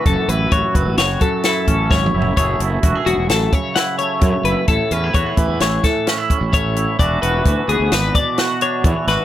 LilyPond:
<<
  \new Staff \with { instrumentName = "Clean electric guitar" } { \time 5/4 \key fis \minor \tempo 4 = 130 a'8 b'8 cis''8 b'8 cis''8 a'8 a'4 cis''4 | cis''8 r4 fis'8 a'8 cis''8 fis''8 cis''4 b'8 | a'8 b'8 cis''8 b'8 cis''8 a'8 r4 cis''4 | d''8 b'4 gis'8 b'8 d''8 fis''8 cis''4 b'8 | }
  \new Staff \with { instrumentName = "Clean electric guitar" } { \time 5/4 \key fis \minor << { fis'8 e'8 fis'2 e'8 cis'4 e'8 | <fis a e' gis'>8 e'8 fis'16 gis'4.~ gis'16 e'8 a4 e'8 | r8 cis'16 e'16 fis'16 gis'4.~ gis'16 cis'16 e'16 cis'4 e'8 | <b d' fis'>8 fis'8 fis'2 fis'8 d'4 fis'8 | } \\ { <fis, e>4. fis4 fis,4. fis,4 | fis,4. fis4 cis4. fis,4 | a,4. e4 a,4. a,4 | e4. b4 b,4. e4 | } >> }
  \new Staff \with { instrumentName = "Fingered electric bass" } { \clef bass \time 5/4 \key fis \minor fis,,16 r16 a,,8 a,,16 r16 fis,,16 a,,16 fis,,8 r4 a,,8 gis,,8 fis,,8 | fis,,8 fis,,8 e,,16 r16 e,,16 e,,16 a,,8 r4. fis,16 r16 fis,,16 r16 | a,,16 r16 e,8 e,16 r16 a,,16 e,16 a,,8 r4 r16 a,,4~ a,,16 | e,,8 e,,8 d,16 r16 d,16 d,16 gis,,8 r4. e,16 r16 gis,,16 r16 | }
  \new DrumStaff \with { instrumentName = "Drums" } \drummode { \time 5/4 <hh bd>8 hh8 <hh bd>8 <hh bd>8 <hh sn>8 <hh bd>8 <hh sn>8 <hh bd>8 \tuplet 3/2 { <bd sn>8 toml8 tomfh8 } | <hh bd>8 hh8 <hh bd>8 hh8 <hh sn>8 <hh bd>8 <hh sn>8 hh8 <hh bd>8 hh8 | <hh bd>8 hh8 <hh bd>8 <hh bd>8 <hh sn>8 <hh bd sn>8 <hh sn>8 <hh bd>8 <hh bd>8 hh8 | <hh bd>8 hh8 <hh bd>8 hh8 <hh sn>8 <hh bd>8 <hh sn>8 hh8 <hh bd>8 <hh sn>8 | }
>>